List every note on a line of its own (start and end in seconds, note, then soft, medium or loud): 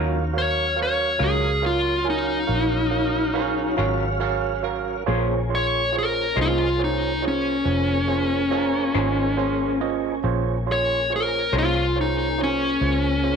0.00 1.16 D#2 medium
0.00 0.16 D#3 medium
0.00 0.16 F#3 medium
0.00 5.04 F#3 medium
0.00 0.17 C#4 medium
0.00 5.04 C#4 medium
0.00 0.32 D#4 medium
0.00 0.17 F4 medium
0.00 0.23 F#4 medium
0.00 0.23 A#4 medium
0.00 0.23 C#5 medium
0.00 0.23 F5 medium
0.00 5.03 F5 medium
0.34 0.66 F#4 soft
0.34 0.66 A#4 soft
0.34 0.66 C#5 soft
0.34 0.66 F5 medium
0.38 0.77 C#5 medium
0.76 1.09 F#4 soft
0.76 1.09 A#4 soft
0.76 1.09 C#5 soft
0.76 1.09 F5 medium
0.83 1.21 C#5 medium
1.19 2.45 C#2 medium
1.19 1.46 D#3 soft
1.19 1.46 F#3 medium
1.19 1.45 C#4 medium
1.19 1.45 F4 medium
1.19 1.51 F#4 soft
1.19 1.51 A#4 soft
1.19 1.52 C#5 soft
1.19 1.52 F5 medium
1.24 1.64 G#4 medium
1.62 1.95 F4 medium
1.62 1.95 A#4 soft
1.62 1.95 C#5 soft
1.62 1.95 F5 medium
1.66 2.06 F4 medium
2.04 2.37 F#4 soft
2.04 2.38 A#4 soft
2.04 2.37 C#5 soft
2.04 2.38 G#5 medium
2.10 3.76 D#4 medium
2.47 3.74 A#1 medium
2.47 2.80 F#4 soft
2.47 2.80 A#4 soft
2.47 2.80 C#5 soft
2.47 2.80 F5 medium
2.91 3.24 F#4 soft
2.91 3.24 A#4 soft
2.91 3.24 C#5 soft
2.91 3.24 F5 medium
3.33 3.66 F#4 medium
3.33 3.77 G#4 medium
3.33 3.66 A#4 medium
3.33 3.67 C#5 medium
3.33 3.77 C#5 medium
3.33 3.67 F5 medium
3.77 5.03 G#1 medium
3.77 4.04 D#3 medium
3.77 4.04 F#3 medium
3.77 4.04 C#4 medium
3.77 4.04 F4 medium
3.77 4.10 F#4 medium
3.77 4.18 G#4 medium
3.77 4.10 A#4 medium
3.77 4.10 C#5 medium
3.77 4.20 C#5 medium
3.77 4.10 F5 medium
4.20 4.53 F#4 medium
4.20 4.61 G#4 medium
4.20 4.53 A#4 medium
4.20 4.53 C#5 medium
4.20 4.63 C#5 medium
4.20 4.53 F5 medium
4.63 4.96 F#4 medium
4.63 4.96 A#4 medium
4.63 5.27 A#4 medium
4.63 4.96 C#5 medium
4.63 4.96 F5 medium
5.06 6.33 A#1 medium
5.06 5.33 A#3 medium
5.06 10.20 A#3 medium
5.06 10.20 C#4 medium
5.06 5.33 C#4 medium
5.06 5.39 F4 medium
5.06 5.39 G#4 medium
5.06 10.20 G#4 medium
5.06 5.34 G#4 medium
5.06 5.39 C5 medium
5.06 5.34 C5 medium
5.06 5.39 C#5 medium
5.49 5.82 F4 medium
5.49 5.82 G#4 soft
5.49 5.82 C#5 medium
5.49 5.82 C6 soft
5.55 5.94 C#5 medium
5.93 6.25 F4 medium
5.93 6.25 G#4 soft
5.93 6.25 C5 soft
5.93 6.26 C#5 medium
5.98 6.38 A#4 medium
6.36 7.62 C2 medium
6.36 6.63 A#3 medium
6.36 6.63 C#4 medium
6.36 6.68 F4 medium
6.36 6.68 G#4 soft
6.36 6.62 G#4 medium
6.36 6.68 C5 soft
6.36 6.62 C5 medium
6.36 6.68 D#5 medium
6.41 6.80 F4 medium
6.79 7.11 F4 medium
6.79 7.11 G#4 soft
6.79 7.12 C5 soft
6.79 7.12 C#5 medium
6.84 7.23 D#4 medium
7.22 7.55 F4 medium
7.22 7.54 G#4 soft
7.22 7.54 C5 soft
7.22 7.55 C#5 medium
7.28 9.79 C#4 medium
7.65 8.90 F1 medium
7.65 7.97 F4 soft
7.65 7.97 G#4 soft
7.65 7.97 C5 soft
7.65 7.97 C#5 medium
8.08 8.40 F4 soft
8.08 8.40 G#4 soft
8.08 8.40 C5 soft
8.08 8.41 C#5 medium
8.51 8.83 F4 medium
8.51 8.94 F4 medium
8.51 8.83 G#4 medium
8.51 8.94 A#4 medium
8.51 8.83 C5 medium
8.51 8.83 C#5 medium
8.94 10.20 G#1 medium
8.94 9.21 A#3 medium
8.94 9.20 C#4 medium
8.94 9.35 D#4 medium
8.94 9.27 F4 medium
8.94 9.20 G#4 medium
8.94 9.27 G#4 medium
8.94 9.37 G#4 medium
8.94 9.20 C5 medium
8.94 9.27 C5 medium
8.94 9.27 C#5 medium
9.37 9.69 F4 medium
9.37 9.80 F4 medium
9.37 9.70 G#4 medium
9.37 9.69 C5 medium
9.37 9.78 C5 medium
9.37 9.70 C#5 medium
9.80 10.43 C#4 medium
9.80 10.13 F4 medium
9.80 10.13 G#4 medium
9.80 10.13 C5 medium
9.80 10.13 D#5 medium
10.23 11.49 A#1 medium
10.23 13.36 A#3 medium
10.23 13.36 C#4 medium
10.23 10.56 F4 medium
10.23 13.36 G#4 medium
10.23 10.56 G#4 medium
10.23 10.56 C5 medium
10.23 10.56 C#5 medium
10.67 10.99 F4 soft
10.67 10.99 G#4 soft
10.67 10.99 C#5 medium
10.67 10.99 C6 soft
10.72 11.11 C#5 medium
11.10 11.42 F4 soft
11.10 11.42 G#4 soft
11.10 11.42 C5 soft
11.10 11.42 C#5 medium
11.16 11.54 A#4 medium
11.52 12.78 C2 medium
11.52 11.79 A#3 medium
11.52 11.79 C#4 medium
11.52 11.85 F4 soft
11.52 11.85 G#4 soft
11.52 11.79 G#4 medium
11.52 11.85 C5 soft
11.52 11.78 C5 medium
11.52 11.85 C#5 medium
11.58 11.97 F4 medium
11.96 12.28 F4 soft
11.96 12.28 G#4 soft
11.96 12.28 C5 soft
11.96 12.28 C#5 medium
12.01 12.40 D#4 medium
12.38 12.71 F4 soft
12.38 12.71 G#4 soft
12.38 12.71 C5 soft
12.38 12.71 C#5 medium
12.43 13.36 C#4 medium
12.81 13.36 C#2 medium
12.81 13.14 F4 soft
12.81 13.14 G#4 soft
12.81 13.14 C5 soft
12.81 13.14 C#5 medium
13.24 13.36 F4 soft
13.24 13.36 G#4 soft
13.24 13.36 C5 soft
13.24 13.36 C#5 medium